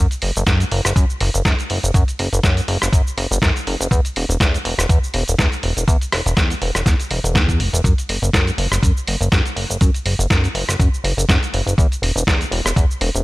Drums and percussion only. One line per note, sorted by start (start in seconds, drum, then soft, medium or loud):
0.11 closed hi-hat soft
0.11 shaker soft
0.22 open hi-hat loud
0.36 closed hi-hat soft
0.36 shaker medium
0.47 kick loud
0.47 snare loud
0.47 closed hi-hat medium
0.47 shaker medium
0.60 closed hi-hat soft
0.60 shaker soft
0.72 open hi-hat loud
0.85 cross-stick medium
0.85 closed hi-hat soft
0.85 shaker medium
0.96 kick loud
0.96 closed hi-hat medium
0.96 shaker medium
1.10 shaker soft
1.21 open hi-hat loud
1.34 closed hi-hat soft
1.34 shaker medium
1.45 kick loud
1.45 snare loud
1.45 closed hi-hat medium
1.45 shaker medium
1.59 closed hi-hat soft
1.59 shaker soft
1.70 open hi-hat loud
1.83 closed hi-hat soft
1.83 shaker medium
1.94 kick loud
1.94 closed hi-hat medium
1.94 shaker medium
2.08 closed hi-hat soft
2.08 shaker soft
2.19 open hi-hat loud
2.33 closed hi-hat soft
2.33 shaker medium
2.43 kick loud
2.43 snare loud
2.43 closed hi-hat medium
2.43 shaker medium
2.57 closed hi-hat medium
2.57 shaker soft
2.68 open hi-hat loud
2.82 cross-stick medium
2.82 closed hi-hat medium
2.82 shaker medium
2.93 kick loud
2.93 closed hi-hat medium
2.93 shaker medium
3.07 shaker soft
3.18 open hi-hat loud
3.31 closed hi-hat soft
3.31 shaker medium
3.42 kick loud
3.42 snare loud
3.42 closed hi-hat medium
3.42 shaker medium
3.56 closed hi-hat soft
3.56 shaker soft
3.67 open hi-hat loud
3.81 closed hi-hat soft
3.81 shaker medium
3.91 kick loud
3.91 closed hi-hat medium
3.91 shaker medium
4.05 closed hi-hat soft
4.05 shaker soft
4.16 open hi-hat loud
4.30 closed hi-hat soft
4.30 shaker medium
4.40 kick loud
4.40 snare loud
4.40 closed hi-hat medium
4.40 shaker medium
4.54 closed hi-hat medium
4.54 shaker soft
4.65 open hi-hat loud
4.79 cross-stick medium
4.79 closed hi-hat medium
4.79 shaker medium
4.89 kick loud
4.89 closed hi-hat medium
4.89 shaker medium
5.04 shaker soft
5.14 open hi-hat loud
5.28 closed hi-hat soft
5.28 shaker medium
5.39 kick loud
5.39 snare loud
5.39 closed hi-hat medium
5.39 shaker medium
5.52 closed hi-hat soft
5.52 shaker soft
5.63 open hi-hat loud
5.77 closed hi-hat soft
5.77 shaker medium
5.88 kick loud
5.88 closed hi-hat medium
5.88 shaker medium
6.01 closed hi-hat soft
6.01 shaker soft
6.12 cross-stick medium
6.12 open hi-hat loud
6.26 closed hi-hat soft
6.26 shaker medium
6.37 kick loud
6.37 snare loud
6.37 closed hi-hat medium
6.37 shaker medium
6.50 closed hi-hat medium
6.50 shaker soft
6.62 open hi-hat loud
6.75 cross-stick medium
6.75 closed hi-hat medium
6.75 shaker medium
6.86 kick loud
6.86 snare soft
6.86 closed hi-hat medium
6.86 shaker medium
7.00 closed hi-hat soft
7.00 shaker soft
7.11 open hi-hat loud
7.24 closed hi-hat soft
7.24 shaker medium
7.35 kick loud
7.35 snare loud
7.35 closed hi-hat medium
7.35 shaker medium
7.49 kick medium
7.49 closed hi-hat soft
7.49 shaker soft
7.60 open hi-hat loud
7.74 closed hi-hat soft
7.74 shaker medium
7.84 kick loud
7.84 closed hi-hat medium
7.84 shaker medium
7.98 closed hi-hat soft
7.98 shaker soft
8.09 open hi-hat loud
8.23 closed hi-hat soft
8.23 shaker medium
8.33 kick loud
8.33 snare loud
8.33 closed hi-hat medium
8.33 shaker medium
8.47 closed hi-hat medium
8.47 shaker soft
8.58 open hi-hat loud
8.72 cross-stick medium
8.72 closed hi-hat medium
8.72 shaker medium
8.83 kick loud
8.83 closed hi-hat medium
8.83 shaker medium
8.97 shaker soft
9.08 open hi-hat loud
9.21 closed hi-hat soft
9.21 shaker medium
9.32 kick loud
9.32 snare loud
9.32 closed hi-hat medium
9.32 shaker medium
9.45 closed hi-hat soft
9.45 shaker soft
9.57 open hi-hat loud
9.70 closed hi-hat soft
9.70 shaker medium
9.81 kick loud
9.81 closed hi-hat medium
9.81 shaker medium
9.94 closed hi-hat soft
9.94 shaker soft
10.06 open hi-hat loud
10.19 closed hi-hat soft
10.19 shaker medium
10.30 kick loud
10.30 snare loud
10.30 closed hi-hat medium
10.30 shaker medium
10.44 closed hi-hat medium
10.44 shaker soft
10.55 open hi-hat loud
10.69 cross-stick medium
10.69 closed hi-hat medium
10.69 shaker medium
10.80 kick loud
10.80 closed hi-hat medium
10.80 shaker medium
10.94 shaker soft
11.04 open hi-hat loud
11.18 closed hi-hat soft
11.18 shaker medium
11.29 kick loud
11.29 snare loud
11.29 closed hi-hat medium
11.29 shaker medium
11.43 closed hi-hat soft
11.43 shaker soft
11.54 open hi-hat loud
11.67 closed hi-hat soft
11.67 shaker medium
11.78 kick loud
11.78 closed hi-hat medium
11.78 shaker medium
11.92 closed hi-hat soft
11.92 shaker soft
12.03 open hi-hat loud
12.17 closed hi-hat soft
12.17 shaker medium
12.27 kick loud
12.27 snare loud
12.27 closed hi-hat medium
12.27 shaker soft
12.41 closed hi-hat soft
12.41 shaker soft
12.52 open hi-hat loud
12.66 cross-stick medium
12.66 closed hi-hat medium
12.66 shaker medium
12.76 kick loud
12.76 closed hi-hat medium
12.76 shaker medium
12.91 shaker soft
13.01 open hi-hat loud
13.15 closed hi-hat soft
13.15 shaker medium